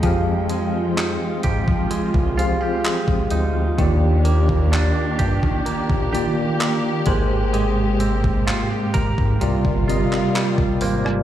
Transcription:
<<
  \new Staff \with { instrumentName = "Tine electric piano" } { \time 4/4 \key f \dorian \tempo 4 = 64 <f c' g' aes' f''>4. r4 <f c' g' aes' f''>4 r8 | <ees bes f' g' d''>4. r4 <ees bes f' g' d''>4 <aes, aes g' bes' c''>8~ | <aes, aes g' bes' c''>4 r4 <c g f' bes' d''>8 <c g f' bes' ees''>4 c''16 d''16 | }
  \new Staff \with { instrumentName = "Clean electric guitar" } { \time 4/4 \key f \dorian <f aes ees' g'>8 aes8 ees'8 g'8 aes8 f'16 g'16 aes8 ees'8 | ees8 bes8 d'8 g'8 bes8 g'8 bes8 aes8 | aes8 c'8 f'16 g'16 bes'8 c8 f'8 g8 bes8 | }
  \new Staff \with { instrumentName = "String section" } { \clef bass \time 4/4 \key f \dorian << { g''1 | g'1~ | g'2 f'2 | } \\ { <f aes f'>1 | <ees bes d'>2.~ <ees bes d'>8 <c aes>8~ | <c aes>2 <c g>2 | } >> }
  \new Staff \with { instrumentName = "Analog synth bass" } { \clef bass \time 4/4 \key f \dorian f,4~ f,16 r16 aes,16 f16 c,16 c,8 r8. d,8 | ees,4~ ees,16 r16 g,16 ees16 bes,,16 bes,,8 r8. aes,,8~ | aes,,4~ aes,,16 r16 aes,,16 aes,16 c,16 g,,8 r8. aes,,8 | }
  \new DrumStaff \with { instrumentName = "Drums" } \drummode { \time 4/4 <hh bd>8 hh8 <hc hh>8 <hh bd>16 bd16 hh16 bd16 hh8 <hc hh>16 bd16 hh8 | <hh bd>8 hh16 bd16 <hc hh>8 <hh bd>16 bd16 hh16 bd16 hh8 <hc hh>8 <hh bd>8 | hh8 hh16 bd16 <hc hh>8 <hh bd>16 bd16 hh16 bd16 hh16 hc16 <hc hh>16 bd16 hho16 ss16 | }
>>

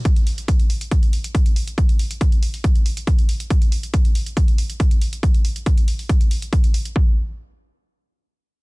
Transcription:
\new DrumStaff \with { instrumentName = "Drums" } \drummode { \time 4/4 \tempo 4 = 139 <hh bd>16 hh16 hho16 hh16 <hh bd>16 hh16 hho16 hh16 <hh bd>16 hh16 hho16 hh16 <hh bd>16 hh16 hho16 hh16 | <hh bd>16 hh16 hho16 hh16 <hh bd>16 hh16 hho16 hho16 <hh bd>16 hh16 hho16 hh16 <hh bd>16 hh16 hho16 hh16 | <hh bd>16 hh16 hho16 hh16 <hh bd>16 hh16 hho16 hh16 <hh bd>16 hh16 hho16 hh16 <hh bd>16 hh16 hho16 hh16 | <hh bd>16 hh16 hho16 hh16 <hh bd>16 hh16 hho16 hho16 <hh bd>16 hh16 hho16 hh16 <hh bd>16 hh16 hho16 hh16 |
bd4 r4 r4 r4 | }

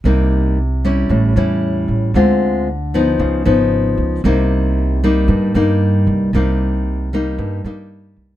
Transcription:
<<
  \new Staff \with { instrumentName = "Nylon-string guitar" } { \time 4/4 \key c \minor \tempo 4 = 114 << { <g bes ees'>4 r8 <g des' e'>4 <g cis' e'>4. | <aes c' f'>4 r8 <f b ees'>4 <f ces' ees'>4. | <g bes ees'>4. <g bes ees'>4 <g bes ees'>4. | <g bes ees'>4. <g bes ees'>4 <g bes ees'>4. | } \\ { c2 a,2 | d2 des2 | c2 g,2 | c2 g,2 | } >> }
  \new Staff \with { instrumentName = "Upright bass" } { \clef bass \time 4/4 \key c \minor c,2 a,,8 e,4 a,,8 | d,2 des,8 aes,,4 des,8 | c,2 g,8 g,4 c,8 | c,2 g,8 g,4 c,8 | }
>>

